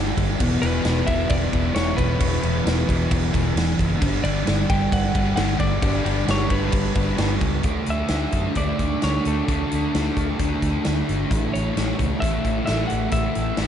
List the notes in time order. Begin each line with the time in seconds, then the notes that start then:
Already playing: G1 G2 D3 G3 D5
0.17 G1, kick, crash
0.40 E1 E2 B2 E3, kick, crash
0.62 E1 B2 E3 B4, crash
0.85 E1 E2 B2 E3, snare, crash
1.07 E1 B2 E3 E5, kick, crash
1.29 E1 D5, kick, crash
1.51 E1 B2 E3, kick, crash
1.74 E1 E2 B2 E3 C#5, snare, crash
1.97 E1 B4, kick, crash
2.19 E1 E2 B2 E3, kick, crash
2.42 E1 B2 E3, crash
2.64 E1 E2 B2 E3, snare, crash
2.86 E1 B2 E3, kick, crash
3.11 E1, kick, crash
3.31 E1 B2 E3, kick, crash
3.55 E1 E2 B2 E3, snare, crash
3.79 F#1, kick, crash
4.00 G1 G2 D3 G3, kick, crash
4.23 G1 D3 G3 D5, crash
4.45 G1 G2 D3 G3, snare, crash
4.67 G1 D3 G3 G5, kick, crash
4.92 G1 F#5, kick, crash
5.13 G1 D3 G3, kick, crash
5.35 G1 G2 D3 G3 F#5, snare, crash
5.59 G1 D5, kick, crash
5.81 G1 G2 D3 G3, kick, crash
6.05 G1 D3 G3, crash
6.26 G1 G2 D3 G3, snare, crash
6.31 C#5
6.49 G1 D3 G3 B4, kick, crash
6.72 G1, kick, crash
6.94 G1 D3 G3, kick, crash
7.17 G1 G2 D3 G3, snare, crash
7.41 C#2, kick, crash
7.63 D2 D3 A3 D4, kick, closed hi-hat
7.86 D2, closed hi-hat
7.90 E5
8.08 D2 D3 A3 D4, snare, closed hi-hat
8.32 F#2, kick, closed hi-hat
8.55 D2 D3 A3 D4 D5, kick, closed hi-hat
8.79 D2, kick, closed hi-hat
9.02 D2 D3 A3 D4 C#5, snare, closed hi-hat
9.25 D2 A4, closed hi-hat
9.47 D2 D3 A3 D4, kick, closed hi-hat
9.71 D2, closed hi-hat
9.92 D2 D3 A3 D4, snare, closed hi-hat
10.17 D2, kick, closed hi-hat
10.38 D2 D3 A3 D4, kick, closed hi-hat
10.62 D2, kick, closed hi-hat
10.84 D2 D3 A3 D4, snare, closed hi-hat
11.09 G1, closed hi-hat
11.30 A1 A2 E3 A3, kick, closed hi-hat
11.53 A1 C#5, closed hi-hat
11.73 A1 A2 E3 A3, closed hi-hat
11.78 snare
11.99 C#2, kick, closed hi-hat
12.20 A1 A2 E3 A3 E5, kick, closed hi-hat
12.45 A1, kick, closed hi-hat
12.66 A1 A2 E3 A3 E5, snare, closed hi-hat
12.88 F#5, closed hi-hat
12.92 A1
13.10 A1 A2 E3 A3 E5, kick, closed hi-hat
13.35 A1, closed hi-hat
13.57 A1 A2 E3 A3, snare, closed hi-hat